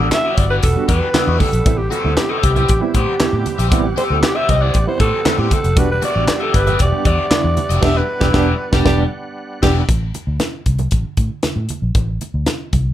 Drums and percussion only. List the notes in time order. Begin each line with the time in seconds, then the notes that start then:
0.11 snare, clap, closed hi-hat, high conga
0.37 kick, closed hi-hat, low conga
0.63 kick, closed hi-hat
0.89 kick, closed hi-hat
1.14 snare, clap, closed hi-hat, high conga
1.40 kick, open hi-hat, high conga
1.53 closed hi-hat
1.66 kick, closed hi-hat, muted conga
1.92 closed hi-hat, muted conga
2.17 snare, clap, closed hi-hat, high conga
2.43 kick, closed hi-hat
2.56 closed hi-hat, low conga
2.69 kick, closed hi-hat, muted conga
2.94 kick, closed hi-hat
3.20 snare, clap, closed hi-hat, high conga
3.46 closed hi-hat, high conga
3.59 closed hi-hat
3.72 kick, closed hi-hat, muted conga
3.97 closed hi-hat, muted conga
4.23 snare, clap, closed hi-hat, high conga
4.49 kick, closed hi-hat, low conga
4.74 kick, closed hi-hat, muted conga
5.00 kick, closed hi-hat
5.25 snare, clap, closed hi-hat, high conga
5.51 kick, closed hi-hat, high conga
5.64 closed hi-hat
5.77 kick, closed hi-hat, muted conga
6.02 closed hi-hat, muted conga
6.28 snare, clap, closed hi-hat, high conga
6.54 kick, closed hi-hat
6.67 closed hi-hat, low conga
6.79 kick, closed hi-hat
7.05 kick, closed hi-hat
7.31 snare, clap, closed hi-hat, high conga
7.57 closed hi-hat, high conga
7.70 closed hi-hat
7.83 kick, snare, crash
8.21 kick, snare
8.34 kick, snare
8.73 kick, snare
8.86 kick, snare
9.63 kick, snare, crash
9.89 kick, closed hi-hat, muted conga
10.14 closed hi-hat, muted conga
10.40 snare, closed hi-hat, high conga
10.66 kick, closed hi-hat
10.79 closed hi-hat, low conga
10.91 kick, closed hi-hat, muted conga
11.17 kick, closed hi-hat
11.43 snare, closed hi-hat, high conga
11.69 closed hi-hat, high conga
11.95 kick, closed hi-hat, muted conga
12.21 closed hi-hat, muted conga
12.46 snare, closed hi-hat, high conga
12.73 kick, closed hi-hat, low conga